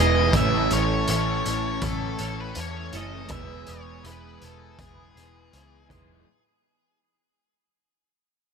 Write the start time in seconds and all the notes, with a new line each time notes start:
Already playing: E1 E3 B3 D#4 E4 B4 G#5 D#6
0.00 E3 G#3 B3 G#4 D#5
0.33 A1 A2 E3 A3 C#4 E4 C#5 E5 A5, kick, closed hi-hat
0.70 A1 A3 C#4 E4 C#5, closed hi-hat
1.07 A1 E3 A3 C#4 E4 C#5, closed hi-hat
1.44 A1 E3 A3 C#4 E4, closed hi-hat
1.81 A1 A2 E3 A3 C#4 E4 A4, kick, closed hi-hat
2.18 A1 A3 C#4 E4 A4, closed hi-hat
2.40 B4
2.55 E2 E3 A3 C#4 E4, closed hi-hat
2.60 C#5
2.92 F#1 E3 A3 C#4 E4 A4, closed hi-hat
2.96 A2 D#5
3.28 E1 E3 G#3 B3 E4 B4 E5 G#5 D#6, kick, closed hi-hat
3.66 E1 G#3 B3 E4 C#5, closed hi-hat
4.03 E1 E3 G#3 B3 E4 B4, closed hi-hat
4.41 E1 E3 G#3 B3 E4 A4, closed hi-hat
4.78 E1 E3 G#3 B3 E4 G#4, kick, closed hi-hat
5.15 E1 G#3 B3 E4 G#4, closed hi-hat
5.52 C#2 E3 G#3 B3 E4, closed hi-hat
5.89 E1 E3 G#3 B3 D#4 E4 G#4, kick, closed hi-hat